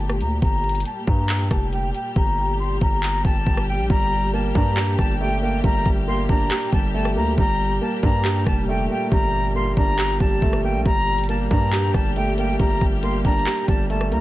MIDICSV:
0, 0, Header, 1, 6, 480
1, 0, Start_track
1, 0, Key_signature, -2, "minor"
1, 0, Tempo, 434783
1, 466, Time_signature, 4, 2, 24, 8
1, 15683, End_track
2, 0, Start_track
2, 0, Title_t, "Flute"
2, 0, Program_c, 0, 73
2, 0, Note_on_c, 0, 81, 77
2, 174, Note_off_c, 0, 81, 0
2, 227, Note_on_c, 0, 82, 79
2, 416, Note_off_c, 0, 82, 0
2, 466, Note_on_c, 0, 82, 106
2, 917, Note_off_c, 0, 82, 0
2, 947, Note_on_c, 0, 81, 79
2, 1136, Note_off_c, 0, 81, 0
2, 1185, Note_on_c, 0, 82, 86
2, 1636, Note_off_c, 0, 82, 0
2, 1664, Note_on_c, 0, 81, 81
2, 1854, Note_off_c, 0, 81, 0
2, 1906, Note_on_c, 0, 79, 80
2, 2096, Note_off_c, 0, 79, 0
2, 2145, Note_on_c, 0, 79, 80
2, 2335, Note_off_c, 0, 79, 0
2, 2386, Note_on_c, 0, 82, 105
2, 2837, Note_off_c, 0, 82, 0
2, 2864, Note_on_c, 0, 84, 83
2, 3054, Note_off_c, 0, 84, 0
2, 3107, Note_on_c, 0, 82, 89
2, 3558, Note_off_c, 0, 82, 0
2, 3585, Note_on_c, 0, 81, 91
2, 4037, Note_off_c, 0, 81, 0
2, 4065, Note_on_c, 0, 79, 75
2, 4254, Note_off_c, 0, 79, 0
2, 4305, Note_on_c, 0, 82, 104
2, 4756, Note_off_c, 0, 82, 0
2, 4787, Note_on_c, 0, 81, 77
2, 4976, Note_off_c, 0, 81, 0
2, 5023, Note_on_c, 0, 82, 81
2, 5475, Note_off_c, 0, 82, 0
2, 5507, Note_on_c, 0, 81, 81
2, 5696, Note_off_c, 0, 81, 0
2, 5746, Note_on_c, 0, 79, 83
2, 5936, Note_off_c, 0, 79, 0
2, 5989, Note_on_c, 0, 79, 77
2, 6177, Note_off_c, 0, 79, 0
2, 6225, Note_on_c, 0, 82, 94
2, 6490, Note_off_c, 0, 82, 0
2, 6707, Note_on_c, 0, 84, 84
2, 6896, Note_off_c, 0, 84, 0
2, 6945, Note_on_c, 0, 82, 80
2, 7396, Note_off_c, 0, 82, 0
2, 7426, Note_on_c, 0, 81, 75
2, 7615, Note_off_c, 0, 81, 0
2, 7664, Note_on_c, 0, 81, 82
2, 7854, Note_off_c, 0, 81, 0
2, 7907, Note_on_c, 0, 82, 83
2, 8096, Note_off_c, 0, 82, 0
2, 8146, Note_on_c, 0, 82, 107
2, 8597, Note_off_c, 0, 82, 0
2, 8627, Note_on_c, 0, 81, 81
2, 8816, Note_off_c, 0, 81, 0
2, 8865, Note_on_c, 0, 82, 84
2, 9317, Note_off_c, 0, 82, 0
2, 9343, Note_on_c, 0, 81, 83
2, 9534, Note_off_c, 0, 81, 0
2, 9587, Note_on_c, 0, 79, 78
2, 9776, Note_off_c, 0, 79, 0
2, 9824, Note_on_c, 0, 79, 78
2, 10014, Note_off_c, 0, 79, 0
2, 10066, Note_on_c, 0, 82, 106
2, 10517, Note_off_c, 0, 82, 0
2, 10544, Note_on_c, 0, 84, 83
2, 10734, Note_off_c, 0, 84, 0
2, 10787, Note_on_c, 0, 82, 90
2, 11237, Note_off_c, 0, 82, 0
2, 11265, Note_on_c, 0, 81, 89
2, 11717, Note_off_c, 0, 81, 0
2, 11743, Note_on_c, 0, 79, 76
2, 11934, Note_off_c, 0, 79, 0
2, 11984, Note_on_c, 0, 82, 108
2, 12436, Note_off_c, 0, 82, 0
2, 12466, Note_on_c, 0, 81, 78
2, 12655, Note_off_c, 0, 81, 0
2, 12702, Note_on_c, 0, 82, 84
2, 13155, Note_off_c, 0, 82, 0
2, 13186, Note_on_c, 0, 81, 81
2, 13375, Note_off_c, 0, 81, 0
2, 13425, Note_on_c, 0, 79, 86
2, 13615, Note_off_c, 0, 79, 0
2, 13668, Note_on_c, 0, 79, 73
2, 13857, Note_off_c, 0, 79, 0
2, 13904, Note_on_c, 0, 82, 94
2, 14169, Note_off_c, 0, 82, 0
2, 14386, Note_on_c, 0, 84, 84
2, 14575, Note_off_c, 0, 84, 0
2, 14625, Note_on_c, 0, 82, 82
2, 15077, Note_off_c, 0, 82, 0
2, 15106, Note_on_c, 0, 81, 77
2, 15295, Note_off_c, 0, 81, 0
2, 15344, Note_on_c, 0, 81, 77
2, 15534, Note_off_c, 0, 81, 0
2, 15586, Note_on_c, 0, 82, 81
2, 15683, Note_off_c, 0, 82, 0
2, 15683, End_track
3, 0, Start_track
3, 0, Title_t, "Grand piano"
3, 0, Program_c, 1, 0
3, 4302, Note_on_c, 1, 55, 89
3, 4500, Control_c, 1, 64, 127
3, 4784, Note_on_c, 1, 58, 91
3, 5023, Note_on_c, 1, 62, 97
3, 5265, Note_on_c, 1, 67, 102
3, 5486, Note_off_c, 1, 55, 0
3, 5502, Note_on_c, 1, 55, 72
3, 5748, Note_on_c, 1, 57, 85
3, 5968, Note_off_c, 1, 58, 0
3, 5985, Note_on_c, 1, 58, 83
3, 6207, Note_off_c, 1, 55, 0
3, 6224, Note_off_c, 1, 62, 0
3, 6224, Note_on_c, 1, 55, 90
3, 6465, Note_off_c, 1, 67, 0
3, 6689, Note_off_c, 1, 58, 0
3, 6706, Note_on_c, 1, 58, 88
3, 6947, Note_off_c, 1, 57, 0
3, 6947, Note_on_c, 1, 62, 88
3, 7186, Note_on_c, 1, 67, 93
3, 7412, Note_off_c, 1, 55, 0
3, 7429, Note_on_c, 1, 55, 82
3, 7666, Note_on_c, 1, 57, 90
3, 7889, Note_off_c, 1, 58, 0
3, 7906, Note_on_c, 1, 58, 83
3, 8127, Note_off_c, 1, 55, 0
3, 8144, Note_on_c, 1, 55, 87
3, 8146, Note_off_c, 1, 57, 0
3, 8146, Note_off_c, 1, 58, 0
3, 8146, Note_off_c, 1, 67, 0
3, 8147, Note_off_c, 1, 62, 0
3, 8157, Control_c, 1, 64, 0
3, 8345, Control_c, 1, 64, 127
3, 8626, Note_on_c, 1, 58, 90
3, 8867, Note_on_c, 1, 62, 96
3, 9106, Note_on_c, 1, 67, 105
3, 9330, Note_off_c, 1, 55, 0
3, 9347, Note_on_c, 1, 55, 85
3, 9589, Note_on_c, 1, 57, 91
3, 9807, Note_off_c, 1, 58, 0
3, 9823, Note_on_c, 1, 58, 82
3, 10047, Note_off_c, 1, 55, 0
3, 10064, Note_on_c, 1, 55, 98
3, 10066, Note_off_c, 1, 62, 0
3, 10306, Note_off_c, 1, 67, 0
3, 10530, Note_off_c, 1, 58, 0
3, 10546, Note_on_c, 1, 58, 85
3, 10787, Note_off_c, 1, 57, 0
3, 10787, Note_on_c, 1, 62, 88
3, 11026, Note_on_c, 1, 67, 100
3, 11248, Note_off_c, 1, 55, 0
3, 11265, Note_on_c, 1, 55, 74
3, 11508, Note_on_c, 1, 57, 91
3, 11729, Note_off_c, 1, 58, 0
3, 11746, Note_on_c, 1, 58, 83
3, 11965, Note_off_c, 1, 55, 0
3, 11981, Note_on_c, 1, 55, 90
3, 11986, Note_off_c, 1, 58, 0
3, 11986, Note_off_c, 1, 62, 0
3, 11986, Note_off_c, 1, 67, 0
3, 11987, Note_off_c, 1, 57, 0
3, 11998, Control_c, 1, 64, 0
3, 12196, Control_c, 1, 64, 127
3, 12464, Note_on_c, 1, 58, 89
3, 12703, Note_on_c, 1, 62, 96
3, 12945, Note_on_c, 1, 67, 101
3, 13166, Note_off_c, 1, 55, 0
3, 13182, Note_on_c, 1, 55, 74
3, 13428, Note_on_c, 1, 57, 86
3, 13648, Note_off_c, 1, 58, 0
3, 13665, Note_on_c, 1, 58, 87
3, 13887, Note_off_c, 1, 55, 0
3, 13904, Note_off_c, 1, 62, 0
3, 13904, Note_on_c, 1, 55, 90
3, 14145, Note_off_c, 1, 67, 0
3, 14369, Note_off_c, 1, 58, 0
3, 14386, Note_on_c, 1, 58, 91
3, 14627, Note_off_c, 1, 57, 0
3, 14627, Note_on_c, 1, 62, 89
3, 14865, Note_on_c, 1, 67, 96
3, 15091, Note_off_c, 1, 55, 0
3, 15108, Note_on_c, 1, 55, 80
3, 15345, Note_on_c, 1, 57, 90
3, 15569, Note_off_c, 1, 58, 0
3, 15585, Note_on_c, 1, 58, 83
3, 15683, Note_off_c, 1, 55, 0
3, 15683, Note_off_c, 1, 57, 0
3, 15683, Note_off_c, 1, 58, 0
3, 15683, Note_off_c, 1, 62, 0
3, 15683, Note_off_c, 1, 67, 0
3, 15683, End_track
4, 0, Start_track
4, 0, Title_t, "String section"
4, 0, Program_c, 2, 48
4, 0, Note_on_c, 2, 46, 78
4, 0, Note_on_c, 2, 57, 74
4, 0, Note_on_c, 2, 67, 89
4, 421, Note_off_c, 2, 57, 0
4, 421, Note_off_c, 2, 67, 0
4, 466, Note_on_c, 2, 55, 75
4, 466, Note_on_c, 2, 67, 93
4, 4262, Note_off_c, 2, 46, 0
4, 4306, Note_on_c, 2, 46, 77
4, 8101, Note_off_c, 2, 55, 0
4, 8146, Note_on_c, 2, 55, 76
4, 11941, Note_off_c, 2, 67, 0
4, 11986, Note_on_c, 2, 67, 90
4, 15683, Note_off_c, 2, 46, 0
4, 15683, Note_off_c, 2, 55, 0
4, 15683, Note_off_c, 2, 67, 0
4, 15683, End_track
5, 0, Start_track
5, 0, Title_t, "808-style bass"
5, 0, Program_c, 3, 38
5, 0, Note_on_c, 3, 31, 103
5, 225, Note_on_c, 3, 38, 100
5, 242, Note_off_c, 3, 31, 0
5, 453, Note_off_c, 3, 38, 0
5, 466, Note_on_c, 3, 31, 112
5, 926, Note_off_c, 3, 31, 0
5, 1186, Note_on_c, 3, 43, 104
5, 1647, Note_off_c, 3, 43, 0
5, 1665, Note_on_c, 3, 29, 105
5, 2126, Note_off_c, 3, 29, 0
5, 2386, Note_on_c, 3, 31, 113
5, 3077, Note_off_c, 3, 31, 0
5, 3106, Note_on_c, 3, 31, 107
5, 3567, Note_off_c, 3, 31, 0
5, 3585, Note_on_c, 3, 31, 101
5, 3816, Note_off_c, 3, 31, 0
5, 3825, Note_on_c, 3, 31, 108
5, 4186, Note_on_c, 3, 34, 100
5, 4202, Note_off_c, 3, 31, 0
5, 4300, Note_off_c, 3, 34, 0
5, 4306, Note_on_c, 3, 31, 110
5, 4997, Note_off_c, 3, 31, 0
5, 5026, Note_on_c, 3, 43, 107
5, 5487, Note_off_c, 3, 43, 0
5, 5505, Note_on_c, 3, 31, 102
5, 6197, Note_off_c, 3, 31, 0
5, 6226, Note_on_c, 3, 31, 116
5, 6456, Note_off_c, 3, 31, 0
5, 6466, Note_on_c, 3, 31, 103
5, 6926, Note_off_c, 3, 31, 0
5, 6946, Note_on_c, 3, 31, 106
5, 7176, Note_off_c, 3, 31, 0
5, 7425, Note_on_c, 3, 31, 109
5, 7906, Note_on_c, 3, 38, 101
5, 7922, Note_off_c, 3, 31, 0
5, 8133, Note_off_c, 3, 38, 0
5, 8146, Note_on_c, 3, 31, 112
5, 8606, Note_off_c, 3, 31, 0
5, 8866, Note_on_c, 3, 43, 105
5, 9326, Note_off_c, 3, 43, 0
5, 9345, Note_on_c, 3, 29, 109
5, 9806, Note_off_c, 3, 29, 0
5, 10066, Note_on_c, 3, 31, 108
5, 10757, Note_off_c, 3, 31, 0
5, 10786, Note_on_c, 3, 31, 106
5, 11247, Note_off_c, 3, 31, 0
5, 11265, Note_on_c, 3, 31, 101
5, 11496, Note_off_c, 3, 31, 0
5, 11505, Note_on_c, 3, 31, 105
5, 11865, Note_on_c, 3, 34, 100
5, 11882, Note_off_c, 3, 31, 0
5, 11979, Note_off_c, 3, 34, 0
5, 11985, Note_on_c, 3, 31, 115
5, 12677, Note_off_c, 3, 31, 0
5, 12706, Note_on_c, 3, 43, 102
5, 13166, Note_off_c, 3, 43, 0
5, 13185, Note_on_c, 3, 31, 105
5, 13876, Note_off_c, 3, 31, 0
5, 13906, Note_on_c, 3, 31, 114
5, 14136, Note_off_c, 3, 31, 0
5, 14146, Note_on_c, 3, 31, 104
5, 14606, Note_off_c, 3, 31, 0
5, 14626, Note_on_c, 3, 31, 108
5, 14856, Note_off_c, 3, 31, 0
5, 15105, Note_on_c, 3, 31, 107
5, 15585, Note_on_c, 3, 38, 103
5, 15602, Note_off_c, 3, 31, 0
5, 15683, Note_off_c, 3, 38, 0
5, 15683, End_track
6, 0, Start_track
6, 0, Title_t, "Drums"
6, 105, Note_on_c, 9, 37, 94
6, 215, Note_off_c, 9, 37, 0
6, 227, Note_on_c, 9, 42, 77
6, 338, Note_off_c, 9, 42, 0
6, 465, Note_on_c, 9, 36, 105
6, 465, Note_on_c, 9, 42, 76
6, 575, Note_off_c, 9, 42, 0
6, 576, Note_off_c, 9, 36, 0
6, 705, Note_on_c, 9, 42, 46
6, 766, Note_off_c, 9, 42, 0
6, 766, Note_on_c, 9, 42, 57
6, 825, Note_off_c, 9, 42, 0
6, 825, Note_on_c, 9, 42, 69
6, 886, Note_off_c, 9, 42, 0
6, 886, Note_on_c, 9, 42, 83
6, 943, Note_off_c, 9, 42, 0
6, 943, Note_on_c, 9, 42, 85
6, 1054, Note_off_c, 9, 42, 0
6, 1186, Note_on_c, 9, 36, 101
6, 1296, Note_off_c, 9, 36, 0
6, 1426, Note_on_c, 9, 39, 113
6, 1429, Note_on_c, 9, 42, 77
6, 1536, Note_off_c, 9, 39, 0
6, 1539, Note_off_c, 9, 42, 0
6, 1665, Note_on_c, 9, 36, 90
6, 1666, Note_on_c, 9, 37, 77
6, 1671, Note_on_c, 9, 42, 77
6, 1775, Note_off_c, 9, 36, 0
6, 1776, Note_off_c, 9, 37, 0
6, 1781, Note_off_c, 9, 42, 0
6, 1906, Note_on_c, 9, 42, 80
6, 2017, Note_off_c, 9, 42, 0
6, 2148, Note_on_c, 9, 42, 76
6, 2258, Note_off_c, 9, 42, 0
6, 2386, Note_on_c, 9, 36, 106
6, 2496, Note_off_c, 9, 36, 0
6, 3106, Note_on_c, 9, 36, 95
6, 3216, Note_off_c, 9, 36, 0
6, 3346, Note_on_c, 9, 39, 113
6, 3456, Note_off_c, 9, 39, 0
6, 3585, Note_on_c, 9, 36, 91
6, 3696, Note_off_c, 9, 36, 0
6, 3825, Note_on_c, 9, 36, 94
6, 3936, Note_off_c, 9, 36, 0
6, 3945, Note_on_c, 9, 37, 95
6, 4056, Note_off_c, 9, 37, 0
6, 4306, Note_on_c, 9, 36, 103
6, 4416, Note_off_c, 9, 36, 0
6, 5026, Note_on_c, 9, 36, 100
6, 5136, Note_off_c, 9, 36, 0
6, 5266, Note_on_c, 9, 39, 113
6, 5376, Note_off_c, 9, 39, 0
6, 5505, Note_on_c, 9, 36, 92
6, 5505, Note_on_c, 9, 37, 76
6, 5615, Note_off_c, 9, 36, 0
6, 5616, Note_off_c, 9, 37, 0
6, 6226, Note_on_c, 9, 36, 105
6, 6336, Note_off_c, 9, 36, 0
6, 6466, Note_on_c, 9, 36, 102
6, 6576, Note_off_c, 9, 36, 0
6, 6946, Note_on_c, 9, 36, 101
6, 7056, Note_off_c, 9, 36, 0
6, 7186, Note_on_c, 9, 39, 117
6, 7296, Note_off_c, 9, 39, 0
6, 7425, Note_on_c, 9, 36, 94
6, 7535, Note_off_c, 9, 36, 0
6, 7785, Note_on_c, 9, 37, 91
6, 7895, Note_off_c, 9, 37, 0
6, 8146, Note_on_c, 9, 36, 104
6, 8256, Note_off_c, 9, 36, 0
6, 8866, Note_on_c, 9, 36, 100
6, 8976, Note_off_c, 9, 36, 0
6, 9106, Note_on_c, 9, 39, 116
6, 9216, Note_off_c, 9, 39, 0
6, 9345, Note_on_c, 9, 36, 97
6, 9345, Note_on_c, 9, 37, 76
6, 9455, Note_off_c, 9, 36, 0
6, 9456, Note_off_c, 9, 37, 0
6, 10065, Note_on_c, 9, 36, 105
6, 10176, Note_off_c, 9, 36, 0
6, 10786, Note_on_c, 9, 36, 98
6, 10896, Note_off_c, 9, 36, 0
6, 11026, Note_on_c, 9, 39, 114
6, 11136, Note_off_c, 9, 39, 0
6, 11265, Note_on_c, 9, 36, 92
6, 11375, Note_off_c, 9, 36, 0
6, 11505, Note_on_c, 9, 36, 96
6, 11616, Note_off_c, 9, 36, 0
6, 11625, Note_on_c, 9, 37, 92
6, 11735, Note_off_c, 9, 37, 0
6, 11985, Note_on_c, 9, 36, 104
6, 11985, Note_on_c, 9, 42, 76
6, 12095, Note_off_c, 9, 42, 0
6, 12096, Note_off_c, 9, 36, 0
6, 12225, Note_on_c, 9, 42, 46
6, 12285, Note_off_c, 9, 42, 0
6, 12285, Note_on_c, 9, 42, 57
6, 12345, Note_off_c, 9, 42, 0
6, 12345, Note_on_c, 9, 42, 71
6, 12406, Note_off_c, 9, 42, 0
6, 12406, Note_on_c, 9, 42, 77
6, 12463, Note_off_c, 9, 42, 0
6, 12463, Note_on_c, 9, 42, 84
6, 12574, Note_off_c, 9, 42, 0
6, 12706, Note_on_c, 9, 36, 95
6, 12816, Note_off_c, 9, 36, 0
6, 12945, Note_on_c, 9, 39, 117
6, 12948, Note_on_c, 9, 42, 74
6, 13056, Note_off_c, 9, 39, 0
6, 13059, Note_off_c, 9, 42, 0
6, 13185, Note_on_c, 9, 36, 94
6, 13185, Note_on_c, 9, 37, 74
6, 13190, Note_on_c, 9, 42, 76
6, 13295, Note_off_c, 9, 36, 0
6, 13295, Note_off_c, 9, 37, 0
6, 13301, Note_off_c, 9, 42, 0
6, 13426, Note_on_c, 9, 42, 80
6, 13536, Note_off_c, 9, 42, 0
6, 13668, Note_on_c, 9, 42, 77
6, 13778, Note_off_c, 9, 42, 0
6, 13905, Note_on_c, 9, 42, 75
6, 13906, Note_on_c, 9, 36, 107
6, 14015, Note_off_c, 9, 42, 0
6, 14016, Note_off_c, 9, 36, 0
6, 14146, Note_on_c, 9, 36, 104
6, 14256, Note_off_c, 9, 36, 0
6, 14383, Note_on_c, 9, 42, 85
6, 14494, Note_off_c, 9, 42, 0
6, 14625, Note_on_c, 9, 42, 54
6, 14626, Note_on_c, 9, 36, 100
6, 14705, Note_off_c, 9, 42, 0
6, 14705, Note_on_c, 9, 42, 55
6, 14736, Note_off_c, 9, 36, 0
6, 14785, Note_off_c, 9, 42, 0
6, 14785, Note_on_c, 9, 42, 56
6, 14865, Note_on_c, 9, 39, 115
6, 14868, Note_off_c, 9, 42, 0
6, 14868, Note_on_c, 9, 42, 83
6, 14976, Note_off_c, 9, 39, 0
6, 14979, Note_off_c, 9, 42, 0
6, 15105, Note_on_c, 9, 36, 96
6, 15111, Note_on_c, 9, 42, 70
6, 15215, Note_off_c, 9, 36, 0
6, 15221, Note_off_c, 9, 42, 0
6, 15346, Note_on_c, 9, 42, 79
6, 15456, Note_off_c, 9, 42, 0
6, 15464, Note_on_c, 9, 37, 92
6, 15575, Note_off_c, 9, 37, 0
6, 15587, Note_on_c, 9, 42, 76
6, 15683, Note_off_c, 9, 42, 0
6, 15683, End_track
0, 0, End_of_file